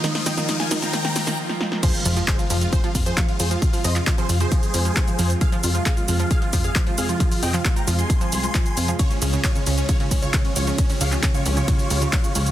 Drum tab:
CC |----------------|x---------------|----------------|----------------|
RD |----------------|----------------|----------------|----------------|
HH |xooxxxoxxxox----|xxoxxxoxxxoxxxox|xooxxxoxxxoxxxox|xxoxxxoxxxoxxxox|
SH |x-xxx-xxx-xx----|xxxxxxxxx-xxx-xx|xxxxxxxxxxxxxxxx|xxxxxxxxx-xxx-xx|
CP |----------------|----x-------x---|---xx-------x---|----x-------x---|
SD |oooooooooooo-ooo|----------------|----------------|----------------|
BD |----------------|o---o---o-o-o---|o---o---o---o---|o---o---o-o-o---|

CC |----------------|----------------|----------------|
RD |----------------|x---x---x---x---|x---x---x---x---|
HH |xooxxxoxxxoxxxox|xxoxxxoxxxoxxxox|xooxxxoxxxoxxxox|
SH |xxxxxxxxxxxxxxxx|xxxxxxxxx-xxx-xx|xxxxxxxxxxxxxxxx|
CP |---xx-------x---|----x-------x---|---xx-------x---|
SD |----------------|----------------|----------------|
BD |o---o---o---o---|o---o---o-o-o---|o---o---o---o---|